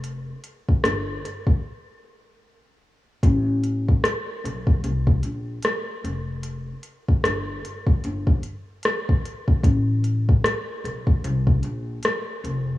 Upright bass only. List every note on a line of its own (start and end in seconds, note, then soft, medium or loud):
0.00 0.30 F1 medium
0.84 1.17 G1 medium
3.23 3.90 A1 loud
4.44 4.77 B1 medium
4.84 5.17 C2 loud
5.24 5.57 A#1 medium
6.04 6.70 F1 medium
7.24 7.57 G1 medium
8.05 8.37 G1 loud
9.64 10.30 A1 loud
10.84 11.17 B1 medium
11.24 11.57 C2 loud
11.64 11.97 A#1 medium
12.44 12.78 F1 medium